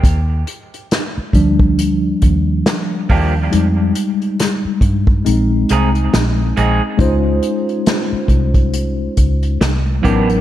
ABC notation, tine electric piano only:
X:1
M:4/4
L:1/8
Q:"Swing 16ths" 1/4=69
K:Eb
V:1 name="Tine electric piano"
z3 [F,G,D]3 z2 | [G,A,E] z3 [A,CE]4 | [A,_DEFc]3 z4 [_G,=B,DE_B] |]